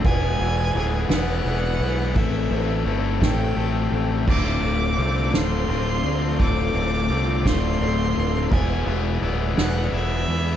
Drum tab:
CC |------|------|x-----|------|
RD |xxxxxx|xxxxxx|-xxxxx|xxxxxx|
SD |---o--|---o--|---o--|---o--|
BD |o-----|o--o--|o-----|o--o--|

CC |------|
RD |xxxxxx|
SD |---o--|
BD |o-----|